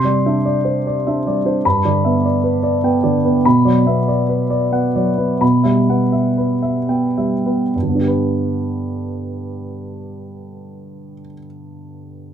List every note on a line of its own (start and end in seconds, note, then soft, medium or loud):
0.00 1.63 C3 soft
0.00 0.16 C6 medium
0.04 0.36 G3 soft
0.04 0.36 D5 soft
0.26 0.57 D4 soft
0.26 0.45 E5 soft
0.46 0.77 D5 soft
0.65 0.97 C5 soft
0.87 1.18 D5 soft
1.07 1.38 D4 soft
1.07 1.38 E5 soft
1.27 1.58 G3 soft
1.27 1.58 D5 soft
1.46 1.65 D4 soft
1.46 1.66 C5 soft
1.65 3.42 G2 soft
1.65 1.97 B5 medium
1.85 2.17 D3 soft
1.85 2.17 D5 soft
2.05 2.37 B3 soft
2.05 2.24 E5 soft
2.25 2.56 D5 soft
2.44 2.76 B4 soft
2.63 2.96 D5 soft
2.84 3.16 B3 soft
2.84 3.16 G5 soft
3.03 3.37 D3 soft
3.03 3.36 D5 soft
3.25 3.46 B3 soft
3.25 3.45 B4 soft
3.45 5.38 B2 soft
3.45 3.79 B5 medium
3.65 3.99 F#3 soft
3.65 3.99 D5 soft
3.87 4.21 B3 soft
3.87 4.08 E5 soft
4.08 4.43 D5 soft
4.29 4.64 B4 soft
4.50 4.86 D5 soft
4.72 5.09 B3 soft
4.72 5.09 F#5 soft
4.95 5.32 F#3 soft
4.95 5.32 D5 soft
5.18 5.41 B3 soft
5.18 5.41 B4 soft
5.41 7.70 B2 soft
5.41 5.79 B5 soft
5.64 6.03 G3 soft
5.64 6.03 E5 soft
5.90 6.28 B3 soft
5.90 6.13 F#5 soft
6.12 6.53 E5 soft
6.38 6.79 B4 soft
6.62 7.06 E5 soft
6.89 7.34 B3 soft
6.89 7.34 G5 soft
7.18 7.63 G3 soft
7.18 7.63 E5 soft
7.45 7.74 B3 soft
7.45 7.74 B4 soft
7.75 11.12 G2 soft
7.82 11.19 D3 soft
7.89 11.26 B3 soft
7.95 11.32 D4 soft
8.01 11.38 G4 soft
8.08 11.45 B4 soft